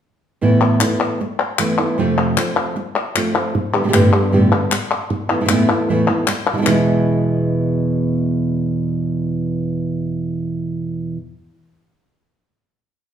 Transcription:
0.41 E2 A2 E3 A3 B3 E4
0.80 E3 A3 B3 E4, clap
1.20 muted nylon-string guitar stroke
1.39 clap
1.59 E3 A3 B3 E4, clap
1.78 E3 A3 B3 E4, clap
1.98 F2 C3 F3 A3 C4 F4
2.18 clap
2.37 F3 A3 C4 F4, clap
2.57 clap
2.76 muted nylon-string guitar stroke
2.96 clap
3.15 F3 A3 C4 F4, clap
3.34 F3 A3 C4 F4, clap
3.55 muted nylon-string guitar stroke
3.74 D3 G3 B3 G4, clap
3.84 A2 D3 G3 B3 G4
3.88 A2 D3 G3 B3 G4
3.93 G2 A2 D3 G3 B3 G4, clap
4.12 D3 G3 G4, clap
4.32 G2 A2 D3 G3 B3 G4
4.51 D3 G3 B3 G4, clap
4.71 muted nylon-string guitar stroke, clap
4.91 clap
5.10 muted nylon-string guitar stroke
5.30 E3 A3 B3 E4, clap
5.41 A2 E3 A3 B3 E4
5.45 A2 E3 A3 B3 E4
5.49 E2 A2 E3 A3 B3 E4, clap
5.69 E3 A3 B3 E4
5.89 E2 A2 E3 A3 B3 E4
6.08 E3 A3 B3 E4, clap
6.27 muted nylon-string guitar stroke, clap
6.47 clap
6.53 B2 E3 G#3 B3 E4
6.57 B2 E3 G#3 B3 E4
6.62 B2 E3 G#3 B3 E4
6.66 E2 B2 E3 G#3 B3 E4, clap

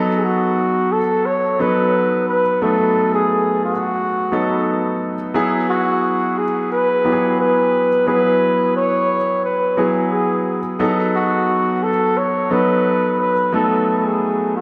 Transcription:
Already playing: F#3 B3 D#4 A4
0.17 G#4
0.24 F#4
0.92 A4
1.26 C#5
1.59 F#3 B3 D#4 A4 B4
2.28 B4
2.61 F#3 A3 B3 D#4 A4
3.14 G#4
3.65 F#4
4.32 F#3 B3 D#4 A4
5.34 F#3 B3 E4 G#4
5.70 F#4
6.38 G#4
6.72 B4
7.04 F#3 B3 E4 G4
7.12 G#4
7.40 B4
8.07 F#3 B3 E4 G#4 B4
8.76 C#5
9.44 B4
9.77 F#3 B3 E4 G#4
10.13 G#4
10.79 F#3 B3 D#4 A4
11.15 F#4
11.83 A4
12.17 C#5
12.50 F#3 B3 D#4 A4 B4
13.20 B4
13.52 F#3 A3 B3 D#4 A4
13.98 A4
14.05 G#4
14.56 F#4

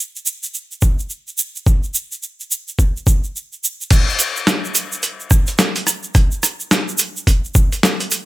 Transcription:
0.16 shaker
0.26 shaker
0.43 shaker
0.54 shaker
0.71 shaker
0.82 kick, shaker
0.99 shaker
1.10 shaker
1.28 shaker
1.38 shaker
1.56 shaker
1.67 kick, shaker
1.83 shaker
1.95 shaker
2.12 shaker
2.23 shaker
2.40 shaker
2.51 shaker
2.68 shaker
2.79 kick, shaker
2.97 shaker
3.07 kick, shaker
3.24 shaker
3.36 shaker
3.53 shaker
3.64 shaker
3.81 shaker
3.90 kick, closed hi-hat, crash, shaker
4.09 shaker
4.19 closed hi-hat, shaker
4.36 shaker
4.47 snare, closed hi-hat, shaker
4.64 shaker
4.75 closed hi-hat, shaker
4.92 shaker
5.03 closed hi-hat, shaker
5.20 shaker
5.31 kick, cross-stick, shaker
5.47 closed hi-hat, shaker
5.59 snare, closed hi-hat, shaker
5.76 closed hi-hat, shaker
5.87 cross-stick, closed hi-hat, shaker
6.03 shaker
6.15 kick, cross-stick, closed hi-hat, shaker
6.32 shaker
6.43 cross-stick, closed hi-hat, shaker
6.60 shaker
6.71 snare, closed hi-hat, shaker
6.89 shaker
6.98 closed hi-hat, shaker
7.17 shaker
7.27 kick, closed hi-hat, shaker
7.45 shaker
7.55 kick, shaker
7.72 closed hi-hat, shaker
7.83 snare, closed hi-hat, shaker
8.00 closed hi-hat, shaker
8.11 closed hi-hat, shaker

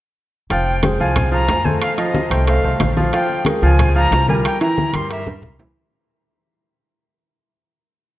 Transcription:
0.50 F1 F3 F4 F5 G5, high bongo, high conga, high timbale
0.67 high conga
0.83 G#3 G#4 C5, high bongo, high conga, high timbale, low timbale
0.99 C2 F3 F4 F5 G#5, high conga
1.16 high bongo, high conga, low conga, high timbale
1.32 F3 F4 F5 A#5, high conga
1.48 F2, high bongo, low bongo, high conga, high timbale, low timbale
1.65 A3 A4 C5 G#5, high conga
1.81 F5, high bongo, high conga, high timbale
1.97 F3 F4 D#5 F5, high bongo, high conga, high timbale
2.14 high bongo, high conga, low timbale
2.30 C2 A3 A4 C5 G5, high bongo, high conga, high timbale
2.47 A3 A4 C5 F5, high bongo, high conga, high timbale
2.64 C2 A3 A4 C5, high bongo, high conga
2.80 A#1, high bongo, low bongo, high conga, high timbale, low timbale
2.97 F3 F4 F5, high conga
3.13 F3 F4 F5 G5, high bongo, high conga, high timbale
3.29 high conga
3.45 G#3 G#4 A#4, high bongo, high conga, high timbale, low timbale
3.62 C#2 F3 F4 F5 G#5, high conga
3.79 high bongo, high conga, low conga, high timbale
3.95 F3 F4 F5 A#5, high conga
4.11 C2, high bongo, low bongo, high conga, high timbale, low timbale
4.28 G3 G4 A#4 G#5, high conga
4.45 G5, high bongo, high conga, high timbale
4.61 E3 E4 E5 A#5, high bongo, high conga, high timbale
4.78 high bongo, high conga, low timbale
4.93 G2 G3 G4 A#4 C6, high bongo, high conga, high timbale
5.10 G3 G4 A#4 E5, high bongo, high timbale
5.26 G3 G4 A#4, high bongo, low conga, high timbale
5.42 C2, high bongo, low conga
5.59 E3 E4 E5, low bongo, low conga, low timbale

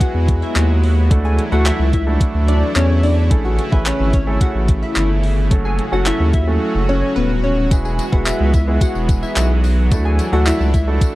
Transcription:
Already playing: F#3 G#3 B3 E4 F#4 G#4
0.00 F#4 F#5, kick, closed hi-hat
0.14 E2
0.28 kick, closed hi-hat
0.42 E4 E5
0.56 D#2, clap, closed hi-hat
0.83 open hi-hat
1.11 D2 E3 A3 D4 E4 F#4 A4, kick, closed hi-hat
1.25 G#4 G#5
1.39 closed hi-hat
1.52 D2 A3 D4 E4 F#4 A4 F#5
1.66 E4 E5, clap, closed hi-hat
1.79 C#2
1.93 E4 E5, kick, closed hi-hat
2.07 A3 D4 E4 F#4 A4
2.21 kick, closed hi-hat
2.35 D2
2.48 D4 D5, closed hi-hat
2.76 E2 C#4 C#5, clap, closed hi-hat
3.03 D4 D5, open hi-hat
3.30 A1 C#3 A3 C#4 E4 G#4 A4, kick, closed hi-hat
3.45 F#4 F#5
3.59 closed hi-hat
3.72 A1 A3 C#4 E4 G#4 B4 E5, kick
3.86 C#4 C#5, clap, closed hi-hat
4.00 G#1
4.13 C#4 C#5, kick, closed hi-hat
4.27 A3 C#4 E4 G#4 A4
4.41 F#4 F#5, kick, closed hi-hat
4.55 A1
4.68 kick, closed hi-hat
4.83 E4 E5
4.96 G1, clap, closed hi-hat
5.23 open hi-hat
5.51 F#1 A2 F#3 A3 C#4 F#4 A4, kick, closed hi-hat
5.65 G#4 G#5
5.79 closed hi-hat
5.92 F#1 F#3 A3 C#4 F#4 A4 F#5
6.06 E4 E5, clap, closed hi-hat
6.20 D#2
6.33 E4 E5, kick, closed hi-hat
6.47 F#3 A3 C#4 F#4 A4
6.75 F#1
6.89 C#4 C#5
7.16 D#1 B3 B4
7.44 C#4 C#5
7.71 E1 E3 G#3 B3 E4 F#4 G#4, kick, closed hi-hat, tambourine
7.85 G#4 G#5, tambourine
7.99 closed hi-hat, tambourine
8.12 E1 G#3 B3 E4 F#4 G#4 F#5, kick
8.26 E4 E5, clap, closed hi-hat, tambourine
8.40 C#2
8.54 E4 E5, kick, closed hi-hat, tambourine
8.67 G#3 B3 E4 F#4 G#4
8.81 F#4 F#5, kick, closed hi-hat, tambourine
8.95 E1, tambourine
9.09 kick, closed hi-hat, tambourine
9.23 E4 E5, tambourine
9.36 B1, clap, closed hi-hat, tambourine
9.64 open hi-hat, tambourine
9.91 D2 A3 D4 E4 F#4 A4, kick, closed hi-hat, tambourine
10.05 G#4 G#5
10.19 closed hi-hat, tambourine
10.32 D2 A3 D4 E4 F#4 A4 F#5
10.46 E4 E5, clap, closed hi-hat, tambourine
10.60 C#2, tambourine
10.74 E4 E5, kick, closed hi-hat, tambourine
10.87 A3 D4 E4 F#4 A4
11.01 kick, closed hi-hat, tambourine

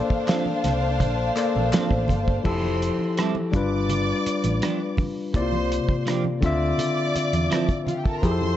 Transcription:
Already playing: A#3 D4 A4 C5 D5 F5
0.10 muted fingered electric bass stroke, kick, high conga
0.27 F3 C4 D4 A4, snare, clap, closed hi-hat
0.46 high conga
0.64 C2, snare, closed hi-hat, muted conga, low conga
1.00 A#1, kick, closed hi-hat, muted conga, low conga
1.36 A#3 A4 C5 D5, clap, closed hi-hat
1.56 A#1, high conga
1.72 F3 C4 D4 A4, snare, clap, closed hi-hat, muted conga, high conga
1.91 A1, kick
2.08 G1, kick, closed hi-hat, muted conga, high conga, low conga
2.28 kick
2.44 F1 F3 E4 G4 A4 C5 C6, kick, crash, muted conga
2.62 high conga
2.82 closed hi-hat
2.98 high conga
3.17 G3 C4 E4 A4, cross-stick, closed hi-hat
3.35 high conga
3.52 G1 G3 D4 F4 D5 D6, kick, closed hi-hat, low conga
3.56 B4
3.89 closed hi-hat, low conga
4.26 muted fingered electric bass stroke, closed hi-hat
4.44 A1, closed hi-hat, high conga
4.62 F3 B3 D4 G4, cross-stick, closed hi-hat, muted conga, high conga
4.97 kick, open hi-hat, muted conga, high conga, low conga
5.34 C2 C3 A#3 E4 C5 D5 C6, kick, closed hi-hat, muted conga
5.42 F4
5.52 high conga
5.69 closed hi-hat, muted conga
5.88 kick, high conga
6.06 F3 A#3 D4 G4, cross-stick, closed hi-hat
6.24 high conga
6.41 D2 D3 C4 F4 D5 D6, kick, closed hi-hat, low conga
6.46 E5
6.78 closed hi-hat, low conga
7.15 muted fingered electric bass stroke, closed hi-hat, muted conga
7.33 E2, closed hi-hat, high conga
7.50 F3 C4 E4 A4, cross-stick, closed hi-hat, high conga
7.69 kick, closed hi-hat
7.87 F4 F5, closed hi-hat, high conga, low conga
7.97 G4 G5
8.05 A4 A5, kick
8.13 A#4 A#5
8.22 F2 F3 E4 G4 G#4 C5 C6, kick, closed hi-hat, muted conga
8.31 A4
8.42 high conga

